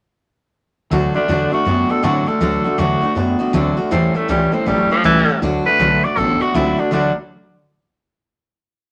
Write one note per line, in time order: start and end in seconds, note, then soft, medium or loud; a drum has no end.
0.91 1.14 D2 medium
0.91 1.15 D3 medium
0.91 1.15 F#3 medium
0.91 1.15 A3 medium
0.91 1.15 D4 medium
0.91 1.13 F#4 loud
1.14 1.27 D3 medium
1.14 1.28 A3 soft
1.14 1.51 D4 medium
1.14 1.28 D4 medium
1.14 1.28 F#4 medium
1.28 1.51 E2 medium
1.28 1.52 D3 medium
1.28 1.52 F#3 medium
1.28 1.52 A3 medium
1.28 1.51 D4 medium
1.28 1.50 F#4 medium
1.52 1.64 D3 medium
1.52 1.65 A3 soft
1.52 1.65 D4 medium
1.52 1.66 F#4 medium
1.52 1.92 F#4 medium
1.65 1.89 F#2 medium
1.65 1.87 D3 medium
1.65 1.89 F#3 medium
1.65 1.90 A3 medium
1.65 1.87 B3 loud
1.65 1.89 D4 medium
1.65 1.88 F#4 medium
1.89 2.02 D3 medium
1.89 2.02 A3 soft
1.89 2.02 B3 medium
1.89 2.03 D4 soft
1.89 2.03 F#4 medium
1.89 2.05 A4 medium
1.89 muted upright bass stroke medium
2.03 2.26 A2 medium
2.03 2.27 D3 medium
2.03 2.27 F#3 medium
2.03 2.27 A3 medium
2.03 2.25 C4 medium
2.03 2.27 D4 medium
2.03 2.29 F#4 medium
2.03 2.25 F#4 medium
2.27 2.40 D3 medium
2.27 2.40 A3 soft
2.27 2.40 D4 medium
2.27 2.41 F#4 medium
2.27 2.80 A4 medium
2.27 muted upright bass stroke medium
2.40 2.64 D2 medium
2.40 2.65 D3 medium
2.40 2.65 F#3 medium
2.40 2.65 A3 medium
2.40 2.64 D4 medium
2.40 2.63 F#4 medium
2.64 2.77 D3 medium
2.64 2.78 A3 soft
2.64 2.78 D4 soft
2.64 2.78 F#4 medium
2.64 muted upright bass stroke medium
2.78 3.01 E2 loud
2.78 3.02 D3 medium
2.78 3.02 F#3 medium
2.78 3.03 A3 medium
2.78 3.02 D4 medium
2.78 3.15 F#4 loud
2.78 3.00 F#4 medium
3.02 3.14 D3 medium
3.02 3.15 A3 medium
3.02 3.15 D4 medium
3.02 3.16 F#4 medium
3.02 muted upright bass stroke medium
3.15 3.39 F#2 medium
3.15 3.37 D3 medium
3.15 3.39 F#3 medium
3.15 3.40 A3 medium
3.15 3.37 B3 loud
3.15 3.39 D4 medium
3.15 3.38 F#4 medium
3.39 3.52 D3 medium
3.39 3.53 A3 soft
3.39 3.53 B3 medium
3.39 3.53 D4 medium
3.39 3.53 F#4 medium
3.39 muted upright bass stroke medium
3.53 3.77 D2 medium
3.53 3.77 D3 medium
3.53 3.77 F#3 medium
3.53 3.77 A3 loud
3.53 3.75 C4 medium
3.53 3.76 D4 loud
3.53 3.75 F#4 loud
3.77 3.90 D3 medium
3.77 3.90 A3 soft
3.77 3.91 D4 soft
3.77 3.91 F#4 medium
3.77 muted upright bass stroke medium
3.91 4.14 E2 medium
3.91 4.15 A2 medium
3.91 4.15 E3 medium
3.91 4.15 G3 medium
3.91 4.15 A3 medium
3.91 4.17 C4 medium
3.91 4.14 C#4 loud
3.91 4.13 A4 medium
4.14 4.28 A2 medium
4.14 4.28 E3 medium
4.14 4.28 G3 medium
4.14 4.29 A3 medium
4.14 4.28 A3 soft
4.14 4.29 C#4 soft
4.14 4.28 A4 medium
4.14 muted upright bass stroke medium
4.28 4.52 C#2 loud
4.28 4.52 A2 medium
4.28 4.53 E3 medium
4.28 4.53 G3 medium
4.28 4.55 G3 medium
4.28 4.52 A3 medium
4.28 4.52 C#4 medium
4.28 4.51 A4 medium
4.52 4.65 A2 medium
4.52 4.65 E3 medium
4.52 4.65 G3 soft
4.52 4.65 A3 soft
4.52 4.69 C4 medium
4.52 4.66 C#4 medium
4.52 4.66 A4 medium
4.52 muted upright bass stroke medium
4.66 4.90 A1 medium
4.66 4.88 A2 medium
4.66 4.88 F#3 loud
4.66 4.90 G3 medium
4.66 4.90 A3 medium
4.66 4.90 C#4 medium
4.66 4.89 A4 medium
4.90 5.03 A2 medium
4.90 5.04 F3 loud
4.90 5.03 F#3 medium
4.90 5.03 G3 soft
4.90 5.03 A3 soft
4.90 5.04 C#4 medium
4.90 5.04 A4 medium
4.90 muted upright bass stroke medium
5.04 5.27 C#2 medium
5.04 5.28 A2 medium
5.04 5.28 E3 medium
5.04 5.41 E3 loud
5.04 5.28 G3 medium
5.04 5.28 A3 medium
5.04 5.27 C#4 medium
5.04 5.27 A4 medium
5.28 5.40 A2 medium
5.28 5.40 E3 medium
5.28 5.42 G3 soft
5.28 5.42 A3 soft
5.28 5.42 C#4 soft
5.28 5.42 A4 soft
5.42 5.65 D2 medium
5.42 5.66 D3 medium
5.42 5.66 F#3 medium
5.42 5.66 A3 medium
5.42 5.65 D4 medium
5.42 5.64 F#4 medium
5.65 5.78 D3 medium
5.65 5.79 A3 soft
5.65 5.79 F#4 medium
5.65 6.05 B4 loud
5.65 muted upright bass stroke medium
5.79 6.02 B1 loud
5.79 6.03 D3 medium
5.79 6.03 F#3 medium
5.79 6.03 A3 medium
5.79 6.03 D4 medium
5.79 6.02 F#4 medium
6.03 6.15 D3 medium
6.03 6.16 A3 soft
6.03 6.17 D4 medium
6.03 6.17 F#4 soft
6.03 6.19 D5 medium
6.03 muted upright bass stroke medium
6.16 6.40 A1 medium
6.16 6.38 D3 medium
6.16 6.40 F#3 medium
6.16 6.41 A3 medium
6.16 6.38 B3 medium
6.16 6.40 D4 medium
6.16 6.39 F#4 medium
6.16 6.43 A4 loud
6.40 6.53 D3 medium
6.40 6.54 A3 soft
6.40 6.53 B3 medium
6.40 6.54 D4 soft
6.40 6.54 F#4 medium
6.40 6.57 F#4 medium
6.40 muted upright bass stroke medium
6.54 6.77 C#2 medium
6.54 6.78 D3 medium
6.54 6.78 F#3 medium
6.54 6.78 A3 medium
6.54 6.76 C4 medium
6.54 6.78 D4 medium
6.54 6.81 E4 medium
6.54 6.76 F#4 medium
6.78 6.90 D3 medium
6.78 6.91 A3 soft
6.78 6.92 D4 soft
6.78 6.92 D4 medium
6.78 6.92 F#4 medium
6.78 muted upright bass stroke medium
6.91 7.14 D2 medium
6.91 7.10 D3 medium
6.91 7.11 F#3 medium
6.91 7.11 A3 medium
6.91 7.11 D4 medium
6.91 7.15 D4 medium
6.91 7.12 F#4 medium